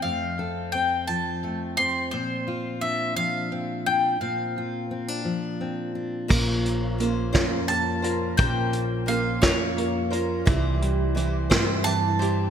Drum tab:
CC |------|------|------|x-----|
HH |------|------|------|-xxxxx|
SD |------|------|------|---o--|
BD |------|------|------|o--o--|

CC |------|------|
HH |xxxxxx|xxxxxx|
SD |---o--|---o--|
BD |o--o--|o--o--|